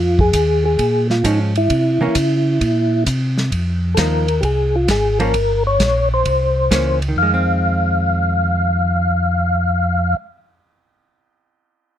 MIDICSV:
0, 0, Header, 1, 5, 480
1, 0, Start_track
1, 0, Key_signature, -4, "minor"
1, 0, Tempo, 455581
1, 1791, Time_signature, 4, 2, 24, 8
1, 12625, End_track
2, 0, Start_track
2, 0, Title_t, "Tonewheel organ"
2, 0, Program_c, 0, 16
2, 0, Note_on_c, 0, 65, 90
2, 213, Note_off_c, 0, 65, 0
2, 218, Note_on_c, 0, 68, 97
2, 676, Note_off_c, 0, 68, 0
2, 689, Note_on_c, 0, 68, 101
2, 1130, Note_off_c, 0, 68, 0
2, 1169, Note_on_c, 0, 65, 73
2, 1321, Note_off_c, 0, 65, 0
2, 1326, Note_on_c, 0, 63, 71
2, 1470, Note_off_c, 0, 63, 0
2, 1660, Note_on_c, 0, 64, 84
2, 3201, Note_off_c, 0, 64, 0
2, 4156, Note_on_c, 0, 69, 60
2, 4198, Note_off_c, 0, 69, 0
2, 4200, Note_on_c, 0, 70, 77
2, 4643, Note_on_c, 0, 67, 55
2, 4651, Note_off_c, 0, 70, 0
2, 4677, Note_off_c, 0, 67, 0
2, 4685, Note_on_c, 0, 68, 78
2, 5012, Note_on_c, 0, 65, 76
2, 5015, Note_off_c, 0, 68, 0
2, 5148, Note_off_c, 0, 65, 0
2, 5169, Note_on_c, 0, 68, 77
2, 5465, Note_off_c, 0, 68, 0
2, 5496, Note_on_c, 0, 70, 81
2, 5935, Note_off_c, 0, 70, 0
2, 5972, Note_on_c, 0, 73, 115
2, 6412, Note_off_c, 0, 73, 0
2, 6466, Note_on_c, 0, 72, 83
2, 7370, Note_off_c, 0, 72, 0
2, 7565, Note_on_c, 0, 77, 72
2, 10712, Note_off_c, 0, 77, 0
2, 12625, End_track
3, 0, Start_track
3, 0, Title_t, "Hollow-body jazz guitar"
3, 0, Program_c, 1, 26
3, 1309, Note_on_c, 1, 53, 44
3, 1315, Note_on_c, 1, 56, 51
3, 1321, Note_on_c, 1, 61, 49
3, 1604, Note_off_c, 1, 53, 0
3, 1607, Note_off_c, 1, 56, 0
3, 1610, Note_off_c, 1, 61, 0
3, 2116, Note_on_c, 1, 52, 63
3, 2124, Note_on_c, 1, 58, 66
3, 2132, Note_on_c, 1, 61, 68
3, 2255, Note_off_c, 1, 52, 0
3, 2259, Note_off_c, 1, 58, 0
3, 2263, Note_off_c, 1, 61, 0
3, 4186, Note_on_c, 1, 53, 59
3, 4196, Note_on_c, 1, 58, 61
3, 4200, Note_on_c, 1, 63, 56
3, 4483, Note_off_c, 1, 53, 0
3, 4488, Note_off_c, 1, 58, 0
3, 4490, Note_off_c, 1, 63, 0
3, 5475, Note_on_c, 1, 53, 66
3, 5484, Note_on_c, 1, 58, 68
3, 5488, Note_on_c, 1, 61, 66
3, 5615, Note_off_c, 1, 53, 0
3, 5619, Note_off_c, 1, 58, 0
3, 5621, Note_off_c, 1, 61, 0
3, 7068, Note_on_c, 1, 52, 54
3, 7075, Note_on_c, 1, 58, 57
3, 7080, Note_on_c, 1, 61, 62
3, 7364, Note_off_c, 1, 52, 0
3, 7368, Note_off_c, 1, 58, 0
3, 7370, Note_off_c, 1, 61, 0
3, 7464, Note_on_c, 1, 51, 45
3, 7613, Note_on_c, 1, 56, 57
3, 7731, Note_on_c, 1, 60, 58
3, 10654, Note_off_c, 1, 51, 0
3, 10803, Note_off_c, 1, 56, 0
3, 10920, Note_off_c, 1, 60, 0
3, 12625, End_track
4, 0, Start_track
4, 0, Title_t, "Tonewheel organ"
4, 0, Program_c, 2, 16
4, 0, Note_on_c, 2, 41, 82
4, 336, Note_off_c, 2, 41, 0
4, 350, Note_on_c, 2, 39, 95
4, 816, Note_off_c, 2, 39, 0
4, 832, Note_on_c, 2, 46, 83
4, 1297, Note_off_c, 2, 46, 0
4, 1314, Note_on_c, 2, 44, 94
4, 1778, Note_off_c, 2, 44, 0
4, 1793, Note_on_c, 2, 48, 76
4, 2096, Note_off_c, 2, 48, 0
4, 2114, Note_on_c, 2, 48, 44
4, 2192, Note_off_c, 2, 48, 0
4, 2270, Note_on_c, 2, 49, 98
4, 2736, Note_off_c, 2, 49, 0
4, 2751, Note_on_c, 2, 46, 80
4, 3217, Note_off_c, 2, 46, 0
4, 3229, Note_on_c, 2, 48, 81
4, 3696, Note_off_c, 2, 48, 0
4, 3708, Note_on_c, 2, 41, 74
4, 4175, Note_off_c, 2, 41, 0
4, 4184, Note_on_c, 2, 39, 88
4, 4654, Note_off_c, 2, 39, 0
4, 4668, Note_on_c, 2, 36, 76
4, 5136, Note_off_c, 2, 36, 0
4, 5147, Note_on_c, 2, 32, 87
4, 5615, Note_off_c, 2, 32, 0
4, 5629, Note_on_c, 2, 31, 74
4, 6096, Note_off_c, 2, 31, 0
4, 6106, Note_on_c, 2, 34, 91
4, 6575, Note_off_c, 2, 34, 0
4, 6593, Note_on_c, 2, 36, 75
4, 7058, Note_off_c, 2, 36, 0
4, 7071, Note_on_c, 2, 37, 80
4, 7537, Note_off_c, 2, 37, 0
4, 7547, Note_on_c, 2, 41, 72
4, 10694, Note_off_c, 2, 41, 0
4, 12625, End_track
5, 0, Start_track
5, 0, Title_t, "Drums"
5, 199, Note_on_c, 9, 36, 43
5, 305, Note_off_c, 9, 36, 0
5, 352, Note_on_c, 9, 44, 55
5, 352, Note_on_c, 9, 51, 68
5, 353, Note_on_c, 9, 36, 24
5, 457, Note_off_c, 9, 44, 0
5, 457, Note_off_c, 9, 51, 0
5, 459, Note_off_c, 9, 36, 0
5, 831, Note_on_c, 9, 51, 53
5, 833, Note_on_c, 9, 36, 18
5, 936, Note_off_c, 9, 51, 0
5, 938, Note_off_c, 9, 36, 0
5, 1158, Note_on_c, 9, 38, 41
5, 1263, Note_off_c, 9, 38, 0
5, 1312, Note_on_c, 9, 44, 45
5, 1312, Note_on_c, 9, 51, 65
5, 1313, Note_on_c, 9, 36, 20
5, 1418, Note_off_c, 9, 36, 0
5, 1418, Note_off_c, 9, 44, 0
5, 1418, Note_off_c, 9, 51, 0
5, 1638, Note_on_c, 9, 51, 42
5, 1743, Note_off_c, 9, 51, 0
5, 1790, Note_on_c, 9, 51, 58
5, 1792, Note_on_c, 9, 36, 24
5, 1896, Note_off_c, 9, 51, 0
5, 1898, Note_off_c, 9, 36, 0
5, 2265, Note_on_c, 9, 44, 58
5, 2265, Note_on_c, 9, 51, 68
5, 2271, Note_on_c, 9, 36, 23
5, 2370, Note_off_c, 9, 44, 0
5, 2370, Note_off_c, 9, 51, 0
5, 2376, Note_off_c, 9, 36, 0
5, 2751, Note_on_c, 9, 36, 23
5, 2752, Note_on_c, 9, 51, 50
5, 2857, Note_off_c, 9, 36, 0
5, 2857, Note_off_c, 9, 51, 0
5, 3229, Note_on_c, 9, 44, 66
5, 3229, Note_on_c, 9, 51, 64
5, 3230, Note_on_c, 9, 36, 22
5, 3334, Note_off_c, 9, 44, 0
5, 3334, Note_off_c, 9, 51, 0
5, 3336, Note_off_c, 9, 36, 0
5, 3556, Note_on_c, 9, 38, 46
5, 3662, Note_off_c, 9, 38, 0
5, 3710, Note_on_c, 9, 36, 16
5, 3710, Note_on_c, 9, 51, 51
5, 3815, Note_off_c, 9, 36, 0
5, 3816, Note_off_c, 9, 51, 0
5, 4184, Note_on_c, 9, 44, 55
5, 4184, Note_on_c, 9, 51, 65
5, 4186, Note_on_c, 9, 38, 64
5, 4188, Note_on_c, 9, 36, 18
5, 4289, Note_off_c, 9, 44, 0
5, 4289, Note_off_c, 9, 51, 0
5, 4291, Note_off_c, 9, 38, 0
5, 4294, Note_off_c, 9, 36, 0
5, 4512, Note_on_c, 9, 51, 36
5, 4618, Note_off_c, 9, 51, 0
5, 4667, Note_on_c, 9, 51, 46
5, 4668, Note_on_c, 9, 36, 16
5, 4772, Note_off_c, 9, 51, 0
5, 4774, Note_off_c, 9, 36, 0
5, 5145, Note_on_c, 9, 44, 51
5, 5145, Note_on_c, 9, 51, 61
5, 5147, Note_on_c, 9, 38, 70
5, 5149, Note_on_c, 9, 36, 24
5, 5250, Note_off_c, 9, 44, 0
5, 5250, Note_off_c, 9, 51, 0
5, 5252, Note_off_c, 9, 38, 0
5, 5254, Note_off_c, 9, 36, 0
5, 5476, Note_on_c, 9, 51, 39
5, 5582, Note_off_c, 9, 51, 0
5, 5625, Note_on_c, 9, 51, 48
5, 5629, Note_on_c, 9, 36, 16
5, 5730, Note_off_c, 9, 51, 0
5, 5735, Note_off_c, 9, 36, 0
5, 6109, Note_on_c, 9, 44, 42
5, 6109, Note_on_c, 9, 51, 58
5, 6111, Note_on_c, 9, 36, 21
5, 6112, Note_on_c, 9, 38, 65
5, 6215, Note_off_c, 9, 44, 0
5, 6215, Note_off_c, 9, 51, 0
5, 6217, Note_off_c, 9, 36, 0
5, 6217, Note_off_c, 9, 38, 0
5, 6590, Note_on_c, 9, 51, 47
5, 6593, Note_on_c, 9, 36, 18
5, 6695, Note_off_c, 9, 51, 0
5, 6698, Note_off_c, 9, 36, 0
5, 7073, Note_on_c, 9, 36, 20
5, 7075, Note_on_c, 9, 44, 58
5, 7075, Note_on_c, 9, 51, 58
5, 7077, Note_on_c, 9, 38, 64
5, 7178, Note_off_c, 9, 36, 0
5, 7180, Note_off_c, 9, 44, 0
5, 7180, Note_off_c, 9, 51, 0
5, 7182, Note_off_c, 9, 38, 0
5, 7397, Note_on_c, 9, 51, 39
5, 7502, Note_off_c, 9, 51, 0
5, 12625, End_track
0, 0, End_of_file